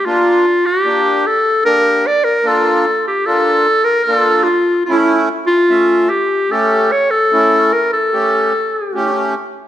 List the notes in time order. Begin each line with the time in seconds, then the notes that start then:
0.06 A#3 D4 F4
0.66 G4
0.85 A#3 D4 G4
1.27 A4
1.65 A#3 D4 G4 A#4
2.07 D5
2.24 A#4
2.44 A#3 D4 F4 A4
3.08 G4
3.26 A#3 D4 F4 A4
3.84 A#4
4.04 A#3 F4 A#4
4.08 D4
4.15 A4
4.44 F4
4.85 A3 C#4 E4
5.47 F4
5.69 A3 C#4 E5
6.10 G4
6.51 A3 C#4 G4 A4
6.92 C#5
7.11 A4
7.33 A3 C#4 E4
7.72 A#4
7.93 A4
8.13 A3 C#4 G4
8.95 A3 C#4 G4